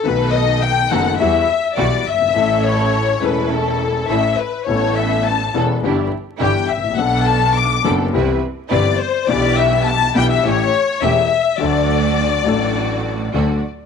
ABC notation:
X:1
M:4/4
L:1/16
Q:1/4=104
K:Amix
V:1 name="Violin section"
B2 ^d2 g2 f2 e4 =d2 e2- | e2 c4 B2 A4 e2 B2 | c2 e2 a2 z6 g2 e2 | f2 a2 d'2 z6 d2 =c2 |
d2 e2 a2 g e c4 e4 | d12- d2 z2 |]
V:2 name="String section"
[B,^DA]6 [B,DA]2 [G,EF]2 z2 [G,EF]2 z2 | [CEA]6 [CEA]6 [CEA]2 z2 | [B,CA]6 [B,CA]2 [DEG]2 z2 [DEG]2 z2 | [B,DA]6 [B,DA]2 [=CEB]2 z2 [CEB]2 z2 |
[B,EG]6 [B,EG]2 [A,CG]2 z2 [A,CG]2 z2 | [A,DF]6 [A,DF]6 [A,DF]2 z2 |]
V:3 name="Upright piano" clef=bass
[B,,,B,,^D,A,B,F]6 [F,,,F,,D,A,B,F]2 [E,,E,G,B,F]2 z2 [B,,,B,,E,G,B,F]2 z/2 F,,,/2 G,,,/2 ^G,,,/2 | [A,,,A,,E,A,CA]6 [E,,,E,,E,A,CA]6 [A,,,A,,E,A,CA]2 z2 | [A,,,A,,E,B,CA]6 [E,,,E,,E,B,CA]2 [G,,,G,,E,B,DG]2 z2 [G,,,G,,E,B,DG]2 z/2 ^G,,,/2 A,,,/2 _B,,,/2 | [B,,,B,,F,B,DA]6 [F,,,F,,F,B,DA]2 [=C,,=C,E,B,=CG]2 z2 [G,,,G,,E,B,CG]2 z2 |
[B,,,B,,E,B,DG]6 [B,,,B,,E,B,DG]2 [A,,,A,,E,A,CG]2 z2 [E,,,E,,E,A,CG]2 z2 | [D,,D,F,A,DA]6 [A,,,A,,F,A,DA]6 [D,,D,F,A,DA]2 z2 |]
V:4 name="Double bass" clef=bass
B,,,6 F,,,2 E,,2 z2 B,,,2 G,,,2 | A,,,6 E,,,6 A,,,2 z2 | A,,,6 E,,,2 G,,,2 z2 G,,,2 A,,,2 | B,,,6 F,,,2 =C,,2 z2 G,,,2 z2 |
B,,,6 B,,,2 A,,,2 z2 E,,,2 z2 | D,,6 A,,,6 D,,2 z2 |]